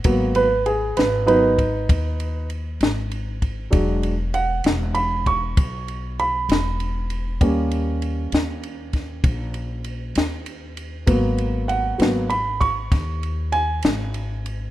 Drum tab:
RD |xxxxxxxxxxxx|xxxxxxxxxxxx|xxxxxxxxxxxx|xxxxxxxxxxxx|
SD |---o-----o--|---o-----o--|---o-o---o--|---o--o--o--|
BD |o----oo----o|o----oo-----|o----oo-----|o----oo-----|